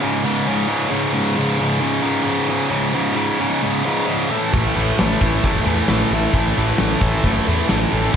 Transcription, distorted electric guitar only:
0.01 0.23 C#2 loud
0.01 0.23 G#2 loud
0.01 0.24 C#3 loud
0.24 0.46 C#2 medium
0.24 0.47 G#2 medium
0.24 0.47 C#3 loud
0.47 0.67 C#2 loud
0.47 0.67 G#2 loud
0.47 0.69 C#3 loud
0.68 0.90 C#2 medium
0.68 0.89 G#2 medium
0.68 0.90 C#3 medium
0.90 1.13 C#2 medium
0.90 1.12 G#2 loud
0.90 1.13 C#3 loud
1.13 1.36 C#2 medium
1.13 1.36 G#2 medium
1.13 1.36 C#3 medium
1.37 1.58 C#2 loud
1.37 1.58 G#2 loud
1.37 1.59 C#3 loud
1.59 1.79 C#2 medium
1.59 1.80 G#2 medium
1.59 1.80 C#3 loud
1.81 2.02 C#2 loud
1.81 2.02 G#2 loud
1.81 2.02 C#3 loud
2.03 2.23 C#2 medium
2.03 2.23 G#2 medium
2.03 2.23 C#3 loud
2.24 2.47 C#2 loud
2.24 2.48 G#2 loud
2.24 2.48 C#3 loud
2.49 2.68 C#2 medium
2.49 2.69 G#2 medium
2.49 2.69 C#3 loud
2.69 2.93 C#2 medium
2.69 2.94 G#2 medium
2.69 2.94 C#3 loud
2.94 3.14 C#2 medium
2.94 3.15 G#2 medium
2.94 3.15 C#3 medium
3.16 3.38 C#2 loud
3.16 3.39 G#2 loud
3.16 3.39 C#3 loud
3.40 3.61 C#2 medium
3.40 3.62 G#2 loud
3.40 3.62 C#3 loud
3.63 3.83 C#2 loud
3.63 3.84 G#2 loud
3.63 3.85 C#3 loud
3.85 4.05 C#2 medium
3.85 4.06 G#2 medium
3.85 4.06 C#3 medium
4.06 4.29 C#2 loud
4.06 4.29 G#2 loud
4.06 4.29 C#3 loud
4.30 4.52 A2 loud
4.30 4.53 E3 loud
4.30 4.53 A3 loud
4.52 4.74 A2 medium
4.52 4.75 E3 medium
4.52 4.75 A3 loud
4.75 4.98 A2 medium
4.75 4.99 E3 medium
4.75 5.00 A3 medium
4.99 5.21 A2 loud
4.99 5.22 E3 loud
4.99 5.21 A3 loud
5.21 5.44 A2 medium
5.21 5.44 E3 medium
5.21 5.45 A3 loud
5.45 5.66 A2 loud
5.45 5.66 E3 medium
5.45 5.67 A3 loud
5.67 5.88 A2 medium
5.67 5.88 E3 medium
5.67 5.89 A3 medium
5.89 6.12 A2 loud
5.89 6.13 E3 loud
5.89 6.13 A3 loud
6.13 6.33 A2 medium
6.13 6.33 E3 medium
6.13 6.34 A3 medium
6.34 6.56 A2 loud
6.34 6.56 E3 loud
6.34 6.57 A3 loud
6.57 6.77 A2 medium
6.57 6.77 E3 loud
6.57 6.77 A3 medium
6.78 7.00 A2 loud
6.78 6.99 E3 loud
6.78 6.99 A3 loud
7.00 7.23 A2 medium
7.00 7.23 E3 medium
7.00 7.24 A3 loud
7.24 7.45 A2 loud
7.24 7.46 E3 loud
7.24 7.46 A3 loud
7.46 7.67 A2 medium
7.46 7.69 E3 medium
7.46 7.68 A3 medium
7.69 7.91 A2 loud
7.69 7.91 E3 loud
7.69 7.92 A3 loud
7.92 8.12 A2 loud
7.92 8.13 E3 loud
7.92 8.13 A3 loud
8.12 8.16 G#2 medium

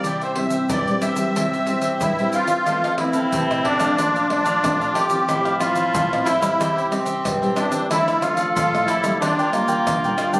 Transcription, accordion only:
0.00 0.22 D5 medium
0.23 0.39 C5 medium
0.36 0.68 E5 medium
0.72 1.02 D5 medium
1.02 2.30 E5 medium
1.67 2.02 C4 medium
2.01 2.35 E4 medium
2.33 2.95 F4 loud
2.98 3.66 E4 medium
3.64 4.28 D4 loud
4.30 4.98 D4 loud
4.94 5.56 G4 medium
5.59 6.27 F4 medium
6.25 6.87 E4 loud
6.89 7.58 C4 loud
7.55 7.87 D4 medium
7.90 8.24 E4 loud
8.21 8.53 F4 medium
8.54 8.89 F4 loud
8.86 9.18 E4 loud
9.20 9.51 D4 loud
9.52 10.14 A#3 medium
10.15 10.32 F4 medium
10.31 10.40 D4 medium

